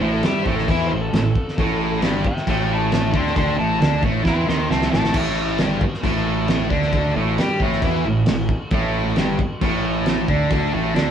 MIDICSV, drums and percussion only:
0, 0, Header, 1, 2, 480
1, 0, Start_track
1, 0, Tempo, 447427
1, 1683, Time_signature, 4, 2, 24, 8
1, 11918, End_track
2, 0, Start_track
2, 0, Title_t, "Drums"
2, 245, Note_on_c, 9, 49, 65
2, 254, Note_on_c, 9, 38, 117
2, 352, Note_off_c, 9, 49, 0
2, 361, Note_off_c, 9, 38, 0
2, 491, Note_on_c, 9, 36, 85
2, 598, Note_off_c, 9, 36, 0
2, 627, Note_on_c, 9, 38, 36
2, 734, Note_on_c, 9, 36, 97
2, 735, Note_off_c, 9, 38, 0
2, 736, Note_on_c, 9, 49, 67
2, 841, Note_off_c, 9, 36, 0
2, 843, Note_off_c, 9, 49, 0
2, 1217, Note_on_c, 9, 49, 59
2, 1225, Note_on_c, 9, 38, 109
2, 1324, Note_off_c, 9, 49, 0
2, 1332, Note_off_c, 9, 38, 0
2, 1453, Note_on_c, 9, 36, 90
2, 1561, Note_off_c, 9, 36, 0
2, 1592, Note_on_c, 9, 38, 37
2, 1695, Note_on_c, 9, 36, 104
2, 1699, Note_off_c, 9, 38, 0
2, 1703, Note_on_c, 9, 49, 54
2, 1803, Note_off_c, 9, 36, 0
2, 1810, Note_off_c, 9, 49, 0
2, 2168, Note_on_c, 9, 49, 63
2, 2176, Note_on_c, 9, 38, 121
2, 2275, Note_off_c, 9, 49, 0
2, 2284, Note_off_c, 9, 38, 0
2, 2409, Note_on_c, 9, 36, 96
2, 2516, Note_off_c, 9, 36, 0
2, 2540, Note_on_c, 9, 38, 36
2, 2647, Note_off_c, 9, 38, 0
2, 2651, Note_on_c, 9, 36, 88
2, 2652, Note_on_c, 9, 49, 77
2, 2759, Note_off_c, 9, 36, 0
2, 2760, Note_off_c, 9, 49, 0
2, 3131, Note_on_c, 9, 49, 71
2, 3139, Note_on_c, 9, 38, 116
2, 3238, Note_off_c, 9, 49, 0
2, 3247, Note_off_c, 9, 38, 0
2, 3365, Note_on_c, 9, 36, 101
2, 3473, Note_off_c, 9, 36, 0
2, 3499, Note_on_c, 9, 38, 37
2, 3606, Note_off_c, 9, 38, 0
2, 3607, Note_on_c, 9, 36, 119
2, 3610, Note_on_c, 9, 49, 61
2, 3714, Note_off_c, 9, 36, 0
2, 3717, Note_off_c, 9, 49, 0
2, 4094, Note_on_c, 9, 49, 66
2, 4103, Note_on_c, 9, 38, 120
2, 4201, Note_off_c, 9, 49, 0
2, 4210, Note_off_c, 9, 38, 0
2, 4321, Note_on_c, 9, 36, 97
2, 4429, Note_off_c, 9, 36, 0
2, 4561, Note_on_c, 9, 36, 88
2, 4566, Note_on_c, 9, 38, 70
2, 4668, Note_off_c, 9, 36, 0
2, 4673, Note_off_c, 9, 38, 0
2, 4815, Note_on_c, 9, 38, 80
2, 4923, Note_off_c, 9, 38, 0
2, 5054, Note_on_c, 9, 38, 88
2, 5161, Note_off_c, 9, 38, 0
2, 5168, Note_on_c, 9, 38, 89
2, 5275, Note_off_c, 9, 38, 0
2, 5292, Note_on_c, 9, 38, 118
2, 5399, Note_off_c, 9, 38, 0
2, 5410, Note_on_c, 9, 38, 94
2, 5512, Note_on_c, 9, 49, 58
2, 5512, Note_on_c, 9, 57, 112
2, 5517, Note_off_c, 9, 38, 0
2, 5518, Note_on_c, 9, 36, 106
2, 5620, Note_off_c, 9, 49, 0
2, 5620, Note_off_c, 9, 57, 0
2, 5626, Note_off_c, 9, 36, 0
2, 5987, Note_on_c, 9, 49, 69
2, 5995, Note_on_c, 9, 38, 121
2, 6094, Note_off_c, 9, 49, 0
2, 6102, Note_off_c, 9, 38, 0
2, 6235, Note_on_c, 9, 36, 98
2, 6342, Note_off_c, 9, 36, 0
2, 6373, Note_on_c, 9, 38, 37
2, 6475, Note_on_c, 9, 36, 102
2, 6480, Note_off_c, 9, 38, 0
2, 6482, Note_on_c, 9, 49, 76
2, 6582, Note_off_c, 9, 36, 0
2, 6589, Note_off_c, 9, 49, 0
2, 6952, Note_on_c, 9, 49, 68
2, 6960, Note_on_c, 9, 38, 108
2, 7059, Note_off_c, 9, 49, 0
2, 7068, Note_off_c, 9, 38, 0
2, 7192, Note_on_c, 9, 36, 100
2, 7299, Note_off_c, 9, 36, 0
2, 7319, Note_on_c, 9, 38, 38
2, 7427, Note_off_c, 9, 38, 0
2, 7431, Note_on_c, 9, 36, 106
2, 7432, Note_on_c, 9, 49, 60
2, 7539, Note_off_c, 9, 36, 0
2, 7540, Note_off_c, 9, 49, 0
2, 7918, Note_on_c, 9, 49, 67
2, 7927, Note_on_c, 9, 38, 119
2, 8025, Note_off_c, 9, 49, 0
2, 8034, Note_off_c, 9, 38, 0
2, 8153, Note_on_c, 9, 36, 80
2, 8261, Note_off_c, 9, 36, 0
2, 8286, Note_on_c, 9, 38, 39
2, 8391, Note_on_c, 9, 36, 99
2, 8393, Note_off_c, 9, 38, 0
2, 8394, Note_on_c, 9, 49, 66
2, 8498, Note_off_c, 9, 36, 0
2, 8501, Note_off_c, 9, 49, 0
2, 8861, Note_on_c, 9, 49, 70
2, 8870, Note_on_c, 9, 38, 114
2, 8969, Note_off_c, 9, 49, 0
2, 8977, Note_off_c, 9, 38, 0
2, 9107, Note_on_c, 9, 36, 92
2, 9214, Note_off_c, 9, 36, 0
2, 9339, Note_on_c, 9, 49, 61
2, 9348, Note_on_c, 9, 36, 110
2, 9447, Note_off_c, 9, 49, 0
2, 9455, Note_off_c, 9, 36, 0
2, 9827, Note_on_c, 9, 49, 64
2, 9835, Note_on_c, 9, 38, 121
2, 9934, Note_off_c, 9, 49, 0
2, 9943, Note_off_c, 9, 38, 0
2, 10073, Note_on_c, 9, 36, 94
2, 10180, Note_off_c, 9, 36, 0
2, 10312, Note_on_c, 9, 49, 77
2, 10314, Note_on_c, 9, 36, 88
2, 10420, Note_off_c, 9, 49, 0
2, 10422, Note_off_c, 9, 36, 0
2, 10790, Note_on_c, 9, 49, 64
2, 10798, Note_on_c, 9, 38, 122
2, 10897, Note_off_c, 9, 49, 0
2, 10906, Note_off_c, 9, 38, 0
2, 11033, Note_on_c, 9, 36, 100
2, 11140, Note_off_c, 9, 36, 0
2, 11268, Note_on_c, 9, 49, 65
2, 11273, Note_on_c, 9, 36, 113
2, 11376, Note_off_c, 9, 49, 0
2, 11380, Note_off_c, 9, 36, 0
2, 11759, Note_on_c, 9, 49, 66
2, 11767, Note_on_c, 9, 38, 114
2, 11866, Note_off_c, 9, 49, 0
2, 11875, Note_off_c, 9, 38, 0
2, 11918, End_track
0, 0, End_of_file